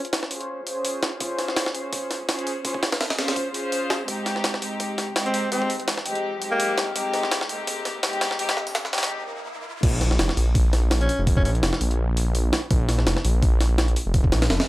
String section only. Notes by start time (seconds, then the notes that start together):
0.31 C#4 F4 G#4 C5
0.66 C#4 F4 G#4 C5
1.20 C#4 F4 G#4 C5
1.75 C#4 F4 G#4 C5
2.29 C#4 F4 G#4 C5
2.65 C#4 F4 G#4 C5
3.18 C#4 F4 G#4 C5
3.54 C#4 F4 G#4 C5
4.08 G#3 C4 D#4 G4
4.61 G#3 C4 D#4 G4
5.16 G#3 C4 D#4 G4
5.52 G#3 C4 D#4 G4
6.06 G#3 C4 D#4 G4
6.41 G#3 C4 D#4 G4
6.95 G#3 C4 D#4 G4
7.49 G#3 C4 D#4 G4
8.04 G#3 C4 D#4 G4
8.39 G#3 C4 D#4 G4
8.93 G#3 C4 D#4 G4